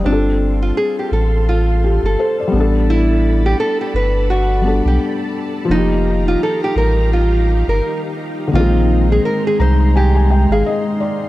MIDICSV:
0, 0, Header, 1, 5, 480
1, 0, Start_track
1, 0, Tempo, 705882
1, 39, Time_signature, 4, 2, 24, 8
1, 7676, End_track
2, 0, Start_track
2, 0, Title_t, "String machine"
2, 0, Program_c, 0, 50
2, 34, Note_on_c, 0, 77, 76
2, 35, Note_on_c, 0, 69, 73
2, 35, Note_on_c, 0, 81, 75
2, 38, Note_on_c, 0, 84, 88
2, 1700, Note_off_c, 0, 77, 0
2, 1701, Note_off_c, 0, 84, 0
2, 1717, Note_on_c, 0, 74, 74
2, 1717, Note_on_c, 0, 83, 92
2, 3849, Note_off_c, 0, 69, 0
2, 3850, Note_off_c, 0, 81, 0
2, 3856, Note_off_c, 0, 74, 0
2, 3856, Note_off_c, 0, 83, 0
2, 3865, Note_on_c, 0, 67, 77
2, 3866, Note_on_c, 0, 77, 70
2, 3867, Note_on_c, 0, 63, 68
2, 3868, Note_on_c, 0, 82, 89
2, 5773, Note_off_c, 0, 67, 0
2, 5773, Note_off_c, 0, 77, 0
2, 5774, Note_off_c, 0, 82, 0
2, 5795, Note_on_c, 0, 82, 66
2, 5796, Note_on_c, 0, 56, 76
2, 5798, Note_on_c, 0, 84, 91
2, 7676, Note_off_c, 0, 56, 0
2, 7676, Note_off_c, 0, 63, 0
2, 7676, Note_off_c, 0, 82, 0
2, 7676, Note_off_c, 0, 84, 0
2, 7676, End_track
3, 0, Start_track
3, 0, Title_t, "Nylon-string guitar"
3, 0, Program_c, 1, 24
3, 39, Note_on_c, 1, 62, 89
3, 397, Note_off_c, 1, 62, 0
3, 425, Note_on_c, 1, 65, 74
3, 511, Note_off_c, 1, 65, 0
3, 525, Note_on_c, 1, 68, 83
3, 649, Note_off_c, 1, 68, 0
3, 673, Note_on_c, 1, 67, 67
3, 756, Note_off_c, 1, 67, 0
3, 768, Note_on_c, 1, 69, 72
3, 980, Note_off_c, 1, 69, 0
3, 1012, Note_on_c, 1, 65, 86
3, 1364, Note_off_c, 1, 65, 0
3, 1398, Note_on_c, 1, 69, 66
3, 1606, Note_off_c, 1, 69, 0
3, 1972, Note_on_c, 1, 64, 97
3, 2324, Note_off_c, 1, 64, 0
3, 2352, Note_on_c, 1, 67, 71
3, 2435, Note_off_c, 1, 67, 0
3, 2447, Note_on_c, 1, 69, 85
3, 2571, Note_off_c, 1, 69, 0
3, 2591, Note_on_c, 1, 67, 71
3, 2675, Note_off_c, 1, 67, 0
3, 2691, Note_on_c, 1, 71, 84
3, 2902, Note_off_c, 1, 71, 0
3, 2924, Note_on_c, 1, 66, 95
3, 3280, Note_off_c, 1, 66, 0
3, 3315, Note_on_c, 1, 67, 63
3, 3525, Note_off_c, 1, 67, 0
3, 3884, Note_on_c, 1, 63, 95
3, 4240, Note_off_c, 1, 63, 0
3, 4270, Note_on_c, 1, 65, 77
3, 4354, Note_off_c, 1, 65, 0
3, 4373, Note_on_c, 1, 69, 77
3, 4494, Note_off_c, 1, 69, 0
3, 4515, Note_on_c, 1, 67, 68
3, 4597, Note_off_c, 1, 67, 0
3, 4608, Note_on_c, 1, 70, 68
3, 4820, Note_off_c, 1, 70, 0
3, 4850, Note_on_c, 1, 65, 80
3, 5203, Note_off_c, 1, 65, 0
3, 5230, Note_on_c, 1, 70, 67
3, 5441, Note_off_c, 1, 70, 0
3, 5816, Note_on_c, 1, 65, 101
3, 6167, Note_off_c, 1, 65, 0
3, 6202, Note_on_c, 1, 68, 69
3, 6281, Note_off_c, 1, 68, 0
3, 6291, Note_on_c, 1, 70, 87
3, 6413, Note_off_c, 1, 70, 0
3, 6440, Note_on_c, 1, 68, 77
3, 6519, Note_off_c, 1, 68, 0
3, 6536, Note_on_c, 1, 72, 74
3, 6744, Note_off_c, 1, 72, 0
3, 6777, Note_on_c, 1, 67, 85
3, 7127, Note_off_c, 1, 67, 0
3, 7155, Note_on_c, 1, 68, 65
3, 7364, Note_off_c, 1, 68, 0
3, 7676, End_track
4, 0, Start_track
4, 0, Title_t, "Felt piano"
4, 0, Program_c, 2, 0
4, 0, Control_c, 2, 64, 127
4, 0, Note_on_c, 2, 55, 59
4, 27, Note_on_c, 2, 60, 63
4, 46, Control_c, 2, 64, 0
4, 57, Note_on_c, 2, 65, 56
4, 83, Note_on_c, 2, 69, 79
4, 181, Control_c, 2, 64, 127
4, 1237, Note_off_c, 2, 69, 0
4, 1252, Note_on_c, 2, 67, 60
4, 1474, Note_off_c, 2, 67, 0
4, 1491, Note_on_c, 2, 72, 75
4, 1493, Note_on_c, 2, 69, 66
4, 1619, Note_off_c, 2, 72, 0
4, 1620, Note_off_c, 2, 69, 0
4, 1631, Note_on_c, 2, 74, 56
4, 1671, Note_off_c, 2, 55, 0
4, 1684, Note_on_c, 2, 55, 76
4, 1686, Note_off_c, 2, 60, 0
4, 1700, Note_off_c, 2, 65, 0
4, 1711, Note_on_c, 2, 59, 73
4, 1728, Control_c, 2, 64, 0
4, 1739, Note_on_c, 2, 62, 70
4, 1768, Note_on_c, 2, 69, 87
4, 1852, Control_c, 2, 64, 127
4, 1854, Note_off_c, 2, 74, 0
4, 3114, Note_off_c, 2, 55, 0
4, 3127, Note_off_c, 2, 59, 0
4, 3140, Note_on_c, 2, 55, 51
4, 3142, Note_off_c, 2, 62, 0
4, 3155, Note_on_c, 2, 59, 46
4, 3156, Note_off_c, 2, 69, 0
4, 3168, Note_on_c, 2, 62, 47
4, 3181, Note_on_c, 2, 69, 60
4, 3842, Note_on_c, 2, 53, 81
4, 3869, Note_off_c, 2, 55, 0
4, 3870, Note_on_c, 2, 58, 58
4, 3877, Note_off_c, 2, 59, 0
4, 3883, Note_off_c, 2, 62, 0
4, 3887, Control_c, 2, 64, 0
4, 3890, Note_off_c, 2, 69, 0
4, 3899, Note_on_c, 2, 63, 60
4, 3925, Note_on_c, 2, 67, 72
4, 3998, Control_c, 2, 64, 127
4, 5753, Note_off_c, 2, 53, 0
4, 5764, Note_on_c, 2, 50, 59
4, 5767, Note_off_c, 2, 58, 0
4, 5781, Note_off_c, 2, 63, 0
4, 5791, Note_on_c, 2, 58, 67
4, 5795, Note_off_c, 2, 67, 0
4, 5807, Note_on_c, 2, 51, 76
4, 5808, Control_c, 2, 64, 0
4, 5818, Note_on_c, 2, 60, 66
4, 5834, Note_off_c, 2, 50, 0
4, 5848, Note_on_c, 2, 56, 73
4, 5941, Control_c, 2, 64, 127
4, 6526, Note_on_c, 2, 82, 80
4, 6746, Note_off_c, 2, 82, 0
4, 6771, Note_on_c, 2, 80, 64
4, 6894, Note_off_c, 2, 80, 0
4, 6904, Note_on_c, 2, 80, 63
4, 6994, Note_off_c, 2, 80, 0
4, 7008, Note_on_c, 2, 79, 58
4, 7135, Note_off_c, 2, 79, 0
4, 7153, Note_on_c, 2, 77, 71
4, 7238, Note_off_c, 2, 77, 0
4, 7251, Note_on_c, 2, 75, 78
4, 7468, Note_off_c, 2, 75, 0
4, 7483, Note_on_c, 2, 74, 66
4, 7676, Note_off_c, 2, 51, 0
4, 7676, Note_off_c, 2, 56, 0
4, 7676, Note_off_c, 2, 58, 0
4, 7676, Note_off_c, 2, 60, 0
4, 7676, Note_off_c, 2, 74, 0
4, 7676, End_track
5, 0, Start_track
5, 0, Title_t, "Sub bass"
5, 0, Program_c, 3, 38
5, 36, Note_on_c, 3, 31, 105
5, 490, Note_off_c, 3, 31, 0
5, 759, Note_on_c, 3, 33, 89
5, 1353, Note_off_c, 3, 33, 0
5, 1382, Note_on_c, 3, 31, 92
5, 1471, Note_off_c, 3, 31, 0
5, 1720, Note_on_c, 3, 33, 94
5, 2412, Note_off_c, 3, 33, 0
5, 2680, Note_on_c, 3, 31, 80
5, 3273, Note_off_c, 3, 31, 0
5, 3300, Note_on_c, 3, 35, 89
5, 3390, Note_off_c, 3, 35, 0
5, 3873, Note_on_c, 3, 29, 106
5, 4329, Note_off_c, 3, 29, 0
5, 4595, Note_on_c, 3, 33, 82
5, 5191, Note_off_c, 3, 33, 0
5, 5222, Note_on_c, 3, 31, 92
5, 5312, Note_off_c, 3, 31, 0
5, 5803, Note_on_c, 3, 34, 99
5, 6253, Note_off_c, 3, 34, 0
5, 6524, Note_on_c, 3, 36, 76
5, 7116, Note_off_c, 3, 36, 0
5, 7138, Note_on_c, 3, 32, 86
5, 7230, Note_off_c, 3, 32, 0
5, 7676, End_track
0, 0, End_of_file